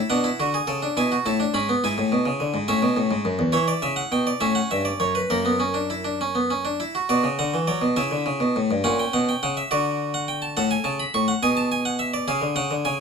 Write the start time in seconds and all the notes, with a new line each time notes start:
Already playing: E4
0.10 B2 D4 F#5
0.24 E4
0.40 D3 F#4
0.54 G#4
0.67 C#3 A4
0.82 D4
0.97 B2 E4 G#5
1.12 F#4
1.26 A2 E4 A5
1.40 D4
1.54 G#2 C#4 B5
1.69 B3
1.84 G#2 E4 G#5
1.98 A2
2.12 B2
2.26 C#3
2.40 D3
2.54 G#2
2.68 A2 C#4 E5
2.82 B2
2.97 A2
3.11 G#2
3.25 F#2
3.39 E2
3.52 E3 E4 C#5
3.68 D5
3.82 C#3 E5
3.96 F#5
4.12 B2 G5
4.27 D5
4.41 A2 C#4 E5
4.55 F#5
4.71 G2 E5
4.85 D5
5.00 F#2 C#5
5.15 B4
5.30 F#2 A#3 A#4
5.45 B3
5.60 C#4
5.74 D4
5.90 E4
6.05 D4
6.21 C#4
6.35 B3
6.50 C#4
6.65 D4
6.80 E4
6.95 F#4
7.09 B2 F#4 D5
7.24 C#3
7.39 D3 F#5
7.54 E3
7.67 F#3 D5
7.82 B2
7.96 C#3 E4 E5
8.11 D3
8.26 C#3
8.40 B2
8.56 A2
8.71 G2
8.84 A#2 C#4 F#5
8.99 G5
9.13 B2 F#5
9.29 G5
9.43 C#3 F#5
9.57 E5
9.71 D3 F#4 D5
10.14 F#5
10.28 G5
10.42 A5
10.57 A2 A4 F#5
10.71 G#5
10.84 C#3 A5
11.00 B5
11.14 A2 C#6
11.28 F#5
11.43 B2 G#4 G#5
11.57 A5
11.72 G#5
11.85 F#5
11.99 E5
12.14 D5
12.28 C#3 G#4 F5
12.41 D3
12.56 C#3 F#5
12.71 D3
12.85 C#3 G#5